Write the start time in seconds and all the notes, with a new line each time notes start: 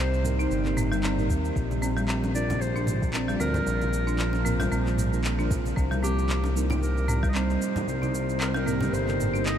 Already playing: C2 C3 G3 A#3 C4 D#4 C5 D#5
0.14 shaker
0.23 G3 A#3 C4 D#4 A#4, mid tom, shaker
0.39 D#4, shaker
0.51 G1, shaker
0.65 G3 A#3 C4 D#4 A#4, clap, shaker
0.77 C4, mid tom, shaker
0.91 G3 A#3 C4 D#4 A#4, shaker
1.03 C4, clap, shaker
1.17 G3 A#3 C4 D#4 A#4, mid tom, shaker
1.30 D#2, kick, shaker
1.45 shaker
1.56 A#1 A#2, kick, shaker
1.71 high conga, shaker
1.82 C4, high bongo, shaker
1.93 F3
1.97 G3, shaker
2.08 C4, clap, shaker
2.23 high bongo, shaker
2.34 F3 A#3 D4 F4 A#4 D5, shaker
2.50 high bongo, high conga, low conga, shaker
2.61 C5, shaker
2.76 D4, high conga, shaker
2.87 mid tom, high conga, shaker
3.02 kick, shaker
3.12 F3 A#3 C4 D4 F4, clap, shaker
3.16 D5
3.28 G3, shaker
3.40 D2 C4 A#4, shaker
3.46 D4
3.54 low conga, shaker
3.67 A#1, shaker
3.82 high conga, shaker
3.93 shaker
4.07 D4, shaker
4.19 clap, shaker
4.33 high bongo, shaker
4.44 F3 A#3 C4 D4 F4 A#4, mid tom, shaker
4.60 G3, high bongo, high conga, low conga, shaker
4.72 A#1 C4, shaker
4.85 F3 A#3 D4 F4 A#4, clap, high conga, shaker
4.98 mid tom, shaker
5.12 F3 A#3 D4 F4 A#4, shaker
5.24 clap, shaker
5.38 F3 A#3 D4 F4 A#4, shaker
5.51 kick, low conga, shaker
5.66 high conga, shaker
5.76 C2 C3 C4, kick, shaker
5.91 G3, high conga, shaker
6.03 C4 G4, high bongo, shaker
6.17 C4, shaker
6.29 clap, shaker
6.44 high bongo, shaker
6.55 G3 A#3 C4 D#4 A#4, shaker
6.70 D#4, high bongo, high conga, low conga, shaker
6.83 A#4, shaker
6.97 high conga, shaker
7.08 C4 D#4, mid tom, high conga, shaker
7.23 G3, kick, shaker
7.29 D#5
7.33 G3 A#3 C4 D#4 C5, clap, shaker
7.37 D#5
7.50 shaker
7.62 shaker
7.76 low conga, shaker
7.87 C2 C5, shaker
8.02 D#4, high conga, shaker
8.15 shaker
8.29 shaker
8.40 C4 A#4, clap, shaker
8.48 C5
8.54 G3 A#4, high bongo, shaker
8.65 G3 A#3 C4 D#4 A#4, mid tom, shaker
8.81 high bongo, high conga, low conga, shaker
8.93 G1 C5, shaker
9.06 G3 A#3 C4 D#4 A#4, clap, high conga, shaker
9.20 mid tom, shaker
9.33 G3 A#3 C4 D#4 A#4, shaker
9.46 D#5, clap, shaker